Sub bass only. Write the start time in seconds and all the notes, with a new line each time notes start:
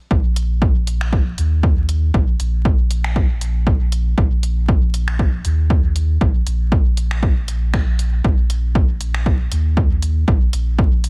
0.11 A#1
1.38 D#2
2.14 A#1
2.40 A#1
4.18 A#1
5.45 D#2
6.21 A#1
6.46 A#1
8.24 A#1
9.52 D#2
10.28 A#1
10.53 A#1